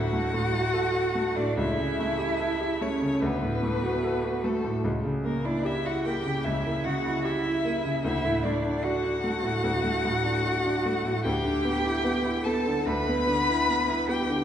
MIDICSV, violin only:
0, 0, Header, 1, 2, 480
1, 0, Start_track
1, 0, Key_signature, 2, "major"
1, 0, Tempo, 820793
1, 915, Time_signature, 4, 2, 24, 8
1, 2832, Tempo, 800000
1, 7152, Tempo, 817439
1, 8561, End_track
2, 0, Start_track
2, 0, Title_t, "Violin"
2, 0, Program_c, 0, 40
2, 0, Note_on_c, 0, 78, 99
2, 796, Note_on_c, 0, 74, 91
2, 805, Note_off_c, 0, 78, 0
2, 916, Note_off_c, 0, 74, 0
2, 921, Note_on_c, 0, 76, 100
2, 1646, Note_on_c, 0, 73, 84
2, 1654, Note_off_c, 0, 76, 0
2, 1876, Note_on_c, 0, 71, 94
2, 1885, Note_off_c, 0, 73, 0
2, 2596, Note_on_c, 0, 69, 77
2, 2605, Note_off_c, 0, 71, 0
2, 2833, Note_off_c, 0, 69, 0
2, 3072, Note_on_c, 0, 70, 77
2, 3197, Note_on_c, 0, 74, 85
2, 3206, Note_off_c, 0, 70, 0
2, 3320, Note_on_c, 0, 76, 98
2, 3329, Note_off_c, 0, 74, 0
2, 3443, Note_on_c, 0, 78, 86
2, 3452, Note_off_c, 0, 76, 0
2, 3548, Note_off_c, 0, 78, 0
2, 3551, Note_on_c, 0, 79, 89
2, 3790, Note_on_c, 0, 76, 90
2, 3799, Note_off_c, 0, 79, 0
2, 4029, Note_on_c, 0, 78, 94
2, 4038, Note_off_c, 0, 76, 0
2, 4268, Note_off_c, 0, 78, 0
2, 4271, Note_on_c, 0, 76, 94
2, 4740, Note_off_c, 0, 76, 0
2, 4750, Note_on_c, 0, 76, 98
2, 4984, Note_on_c, 0, 74, 81
2, 4993, Note_off_c, 0, 76, 0
2, 5222, Note_on_c, 0, 78, 109
2, 5231, Note_off_c, 0, 74, 0
2, 6666, Note_off_c, 0, 78, 0
2, 6670, Note_on_c, 0, 79, 100
2, 7383, Note_on_c, 0, 81, 94
2, 7392, Note_off_c, 0, 79, 0
2, 7628, Note_on_c, 0, 83, 115
2, 7637, Note_off_c, 0, 81, 0
2, 8352, Note_off_c, 0, 83, 0
2, 8356, Note_on_c, 0, 79, 96
2, 8561, Note_off_c, 0, 79, 0
2, 8561, End_track
0, 0, End_of_file